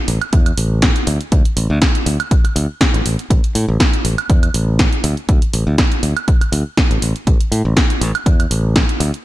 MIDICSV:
0, 0, Header, 1, 4, 480
1, 0, Start_track
1, 0, Tempo, 495868
1, 1277, Time_signature, 4, 2, 24, 8
1, 8953, End_track
2, 0, Start_track
2, 0, Title_t, "Fingered electric bass"
2, 0, Program_c, 0, 33
2, 78, Note_on_c, 0, 33, 89
2, 169, Note_off_c, 0, 33, 0
2, 318, Note_on_c, 0, 40, 79
2, 493, Note_off_c, 0, 40, 0
2, 557, Note_on_c, 0, 33, 86
2, 866, Note_off_c, 0, 33, 0
2, 1037, Note_on_c, 0, 38, 106
2, 1129, Note_off_c, 0, 38, 0
2, 1277, Note_on_c, 0, 38, 97
2, 1369, Note_off_c, 0, 38, 0
2, 1516, Note_on_c, 0, 33, 94
2, 1609, Note_off_c, 0, 33, 0
2, 1645, Note_on_c, 0, 38, 102
2, 1724, Note_off_c, 0, 38, 0
2, 1996, Note_on_c, 0, 38, 91
2, 2088, Note_off_c, 0, 38, 0
2, 2475, Note_on_c, 0, 38, 91
2, 2568, Note_off_c, 0, 38, 0
2, 2846, Note_on_c, 0, 33, 83
2, 2924, Note_off_c, 0, 33, 0
2, 2957, Note_on_c, 0, 33, 88
2, 3049, Note_off_c, 0, 33, 0
2, 3198, Note_on_c, 0, 33, 99
2, 3289, Note_off_c, 0, 33, 0
2, 3437, Note_on_c, 0, 45, 96
2, 3529, Note_off_c, 0, 45, 0
2, 3566, Note_on_c, 0, 33, 105
2, 3645, Note_off_c, 0, 33, 0
2, 3916, Note_on_c, 0, 33, 90
2, 4009, Note_off_c, 0, 33, 0
2, 4157, Note_on_c, 0, 40, 79
2, 4333, Note_off_c, 0, 40, 0
2, 4397, Note_on_c, 0, 33, 90
2, 4706, Note_off_c, 0, 33, 0
2, 4878, Note_on_c, 0, 38, 108
2, 4969, Note_off_c, 0, 38, 0
2, 5118, Note_on_c, 0, 38, 99
2, 5210, Note_off_c, 0, 38, 0
2, 5358, Note_on_c, 0, 33, 94
2, 5449, Note_off_c, 0, 33, 0
2, 5486, Note_on_c, 0, 38, 101
2, 5564, Note_off_c, 0, 38, 0
2, 5836, Note_on_c, 0, 38, 89
2, 5928, Note_off_c, 0, 38, 0
2, 6314, Note_on_c, 0, 38, 90
2, 6407, Note_off_c, 0, 38, 0
2, 6686, Note_on_c, 0, 33, 80
2, 6764, Note_off_c, 0, 33, 0
2, 6796, Note_on_c, 0, 33, 87
2, 6888, Note_off_c, 0, 33, 0
2, 7038, Note_on_c, 0, 33, 100
2, 7129, Note_off_c, 0, 33, 0
2, 7275, Note_on_c, 0, 45, 94
2, 7368, Note_off_c, 0, 45, 0
2, 7405, Note_on_c, 0, 33, 102
2, 7484, Note_off_c, 0, 33, 0
2, 7756, Note_on_c, 0, 33, 91
2, 7848, Note_off_c, 0, 33, 0
2, 7996, Note_on_c, 0, 40, 77
2, 8172, Note_off_c, 0, 40, 0
2, 8235, Note_on_c, 0, 33, 89
2, 8545, Note_off_c, 0, 33, 0
2, 8714, Note_on_c, 0, 38, 104
2, 8807, Note_off_c, 0, 38, 0
2, 8953, End_track
3, 0, Start_track
3, 0, Title_t, "Muted fingered electric bass strokes"
3, 1407, Note_on_c, 9, 29, 44
3, 1504, Note_off_c, 9, 29, 0
3, 2365, Note_on_c, 9, 29, 42
3, 2462, Note_off_c, 9, 29, 0
3, 6206, Note_on_c, 9, 29, 43
3, 6302, Note_off_c, 9, 29, 0
3, 8953, End_track
4, 0, Start_track
4, 0, Title_t, "Drums"
4, 78, Note_on_c, 9, 46, 106
4, 174, Note_off_c, 9, 46, 0
4, 208, Note_on_c, 9, 42, 40
4, 208, Note_on_c, 9, 76, 79
4, 305, Note_off_c, 9, 42, 0
4, 305, Note_off_c, 9, 76, 0
4, 317, Note_on_c, 9, 42, 83
4, 318, Note_on_c, 9, 36, 123
4, 414, Note_off_c, 9, 36, 0
4, 414, Note_off_c, 9, 42, 0
4, 447, Note_on_c, 9, 42, 55
4, 447, Note_on_c, 9, 76, 64
4, 544, Note_off_c, 9, 42, 0
4, 544, Note_off_c, 9, 76, 0
4, 557, Note_on_c, 9, 46, 107
4, 654, Note_off_c, 9, 46, 0
4, 796, Note_on_c, 9, 42, 84
4, 797, Note_on_c, 9, 36, 106
4, 797, Note_on_c, 9, 38, 124
4, 893, Note_off_c, 9, 38, 0
4, 893, Note_off_c, 9, 42, 0
4, 894, Note_off_c, 9, 36, 0
4, 927, Note_on_c, 9, 42, 56
4, 1024, Note_off_c, 9, 42, 0
4, 1037, Note_on_c, 9, 46, 109
4, 1133, Note_off_c, 9, 46, 0
4, 1168, Note_on_c, 9, 42, 37
4, 1264, Note_off_c, 9, 42, 0
4, 1277, Note_on_c, 9, 36, 127
4, 1277, Note_on_c, 9, 42, 82
4, 1374, Note_off_c, 9, 36, 0
4, 1374, Note_off_c, 9, 42, 0
4, 1408, Note_on_c, 9, 42, 53
4, 1504, Note_off_c, 9, 42, 0
4, 1517, Note_on_c, 9, 46, 108
4, 1614, Note_off_c, 9, 46, 0
4, 1758, Note_on_c, 9, 36, 114
4, 1758, Note_on_c, 9, 42, 84
4, 1759, Note_on_c, 9, 38, 127
4, 1854, Note_off_c, 9, 36, 0
4, 1855, Note_off_c, 9, 42, 0
4, 1856, Note_off_c, 9, 38, 0
4, 1889, Note_on_c, 9, 42, 55
4, 1985, Note_off_c, 9, 42, 0
4, 1999, Note_on_c, 9, 46, 110
4, 2095, Note_off_c, 9, 46, 0
4, 2129, Note_on_c, 9, 42, 39
4, 2129, Note_on_c, 9, 76, 81
4, 2226, Note_off_c, 9, 42, 0
4, 2226, Note_off_c, 9, 76, 0
4, 2238, Note_on_c, 9, 36, 124
4, 2239, Note_on_c, 9, 42, 82
4, 2334, Note_off_c, 9, 36, 0
4, 2335, Note_off_c, 9, 42, 0
4, 2369, Note_on_c, 9, 42, 54
4, 2369, Note_on_c, 9, 76, 63
4, 2466, Note_off_c, 9, 42, 0
4, 2466, Note_off_c, 9, 76, 0
4, 2479, Note_on_c, 9, 46, 108
4, 2576, Note_off_c, 9, 46, 0
4, 2718, Note_on_c, 9, 36, 107
4, 2719, Note_on_c, 9, 42, 82
4, 2720, Note_on_c, 9, 38, 127
4, 2815, Note_off_c, 9, 36, 0
4, 2816, Note_off_c, 9, 38, 0
4, 2816, Note_off_c, 9, 42, 0
4, 2850, Note_on_c, 9, 42, 55
4, 2946, Note_off_c, 9, 42, 0
4, 2959, Note_on_c, 9, 46, 112
4, 3056, Note_off_c, 9, 46, 0
4, 3090, Note_on_c, 9, 42, 37
4, 3187, Note_off_c, 9, 42, 0
4, 3198, Note_on_c, 9, 36, 127
4, 3200, Note_on_c, 9, 42, 80
4, 3295, Note_off_c, 9, 36, 0
4, 3297, Note_off_c, 9, 42, 0
4, 3330, Note_on_c, 9, 42, 52
4, 3427, Note_off_c, 9, 42, 0
4, 3439, Note_on_c, 9, 46, 111
4, 3536, Note_off_c, 9, 46, 0
4, 3678, Note_on_c, 9, 36, 114
4, 3680, Note_on_c, 9, 42, 79
4, 3681, Note_on_c, 9, 38, 123
4, 3775, Note_off_c, 9, 36, 0
4, 3777, Note_off_c, 9, 42, 0
4, 3778, Note_off_c, 9, 38, 0
4, 3809, Note_on_c, 9, 42, 53
4, 3906, Note_off_c, 9, 42, 0
4, 3918, Note_on_c, 9, 46, 113
4, 4015, Note_off_c, 9, 46, 0
4, 4049, Note_on_c, 9, 42, 37
4, 4049, Note_on_c, 9, 76, 84
4, 4146, Note_off_c, 9, 42, 0
4, 4146, Note_off_c, 9, 76, 0
4, 4158, Note_on_c, 9, 36, 126
4, 4158, Note_on_c, 9, 42, 81
4, 4255, Note_off_c, 9, 36, 0
4, 4255, Note_off_c, 9, 42, 0
4, 4288, Note_on_c, 9, 42, 52
4, 4288, Note_on_c, 9, 76, 65
4, 4385, Note_off_c, 9, 42, 0
4, 4385, Note_off_c, 9, 76, 0
4, 4398, Note_on_c, 9, 46, 111
4, 4495, Note_off_c, 9, 46, 0
4, 4638, Note_on_c, 9, 36, 111
4, 4638, Note_on_c, 9, 42, 79
4, 4639, Note_on_c, 9, 38, 124
4, 4734, Note_off_c, 9, 36, 0
4, 4735, Note_off_c, 9, 42, 0
4, 4736, Note_off_c, 9, 38, 0
4, 4767, Note_on_c, 9, 42, 51
4, 4864, Note_off_c, 9, 42, 0
4, 4877, Note_on_c, 9, 46, 115
4, 4974, Note_off_c, 9, 46, 0
4, 5007, Note_on_c, 9, 42, 35
4, 5104, Note_off_c, 9, 42, 0
4, 5117, Note_on_c, 9, 42, 78
4, 5118, Note_on_c, 9, 36, 125
4, 5214, Note_off_c, 9, 42, 0
4, 5215, Note_off_c, 9, 36, 0
4, 5247, Note_on_c, 9, 42, 51
4, 5344, Note_off_c, 9, 42, 0
4, 5357, Note_on_c, 9, 46, 110
4, 5454, Note_off_c, 9, 46, 0
4, 5597, Note_on_c, 9, 42, 75
4, 5598, Note_on_c, 9, 36, 113
4, 5598, Note_on_c, 9, 38, 119
4, 5694, Note_off_c, 9, 42, 0
4, 5695, Note_off_c, 9, 36, 0
4, 5695, Note_off_c, 9, 38, 0
4, 5727, Note_on_c, 9, 42, 51
4, 5824, Note_off_c, 9, 42, 0
4, 5837, Note_on_c, 9, 46, 106
4, 5934, Note_off_c, 9, 46, 0
4, 5968, Note_on_c, 9, 42, 36
4, 5968, Note_on_c, 9, 76, 86
4, 6065, Note_off_c, 9, 42, 0
4, 6065, Note_off_c, 9, 76, 0
4, 6077, Note_on_c, 9, 36, 124
4, 6077, Note_on_c, 9, 42, 78
4, 6174, Note_off_c, 9, 36, 0
4, 6174, Note_off_c, 9, 42, 0
4, 6209, Note_on_c, 9, 42, 51
4, 6209, Note_on_c, 9, 76, 67
4, 6306, Note_off_c, 9, 42, 0
4, 6306, Note_off_c, 9, 76, 0
4, 6317, Note_on_c, 9, 46, 110
4, 6414, Note_off_c, 9, 46, 0
4, 6557, Note_on_c, 9, 36, 109
4, 6557, Note_on_c, 9, 42, 77
4, 6558, Note_on_c, 9, 38, 120
4, 6654, Note_off_c, 9, 36, 0
4, 6654, Note_off_c, 9, 42, 0
4, 6655, Note_off_c, 9, 38, 0
4, 6688, Note_on_c, 9, 42, 51
4, 6785, Note_off_c, 9, 42, 0
4, 6798, Note_on_c, 9, 46, 111
4, 6895, Note_off_c, 9, 46, 0
4, 6928, Note_on_c, 9, 42, 35
4, 7025, Note_off_c, 9, 42, 0
4, 7037, Note_on_c, 9, 36, 120
4, 7038, Note_on_c, 9, 42, 78
4, 7134, Note_off_c, 9, 36, 0
4, 7135, Note_off_c, 9, 42, 0
4, 7168, Note_on_c, 9, 42, 51
4, 7265, Note_off_c, 9, 42, 0
4, 7279, Note_on_c, 9, 46, 108
4, 7376, Note_off_c, 9, 46, 0
4, 7517, Note_on_c, 9, 36, 111
4, 7519, Note_on_c, 9, 42, 79
4, 7520, Note_on_c, 9, 38, 120
4, 7614, Note_off_c, 9, 36, 0
4, 7616, Note_off_c, 9, 42, 0
4, 7617, Note_off_c, 9, 38, 0
4, 7649, Note_on_c, 9, 42, 51
4, 7746, Note_off_c, 9, 42, 0
4, 7759, Note_on_c, 9, 46, 104
4, 7856, Note_off_c, 9, 46, 0
4, 7889, Note_on_c, 9, 42, 35
4, 7889, Note_on_c, 9, 76, 90
4, 7986, Note_off_c, 9, 42, 0
4, 7986, Note_off_c, 9, 76, 0
4, 7997, Note_on_c, 9, 36, 118
4, 7999, Note_on_c, 9, 42, 78
4, 8093, Note_off_c, 9, 36, 0
4, 8096, Note_off_c, 9, 42, 0
4, 8130, Note_on_c, 9, 42, 50
4, 8130, Note_on_c, 9, 76, 70
4, 8226, Note_off_c, 9, 42, 0
4, 8226, Note_off_c, 9, 76, 0
4, 8238, Note_on_c, 9, 46, 108
4, 8335, Note_off_c, 9, 46, 0
4, 8477, Note_on_c, 9, 36, 106
4, 8477, Note_on_c, 9, 42, 76
4, 8478, Note_on_c, 9, 38, 116
4, 8574, Note_off_c, 9, 36, 0
4, 8574, Note_off_c, 9, 38, 0
4, 8574, Note_off_c, 9, 42, 0
4, 8607, Note_on_c, 9, 42, 53
4, 8704, Note_off_c, 9, 42, 0
4, 8717, Note_on_c, 9, 46, 107
4, 8814, Note_off_c, 9, 46, 0
4, 8848, Note_on_c, 9, 42, 36
4, 8945, Note_off_c, 9, 42, 0
4, 8953, End_track
0, 0, End_of_file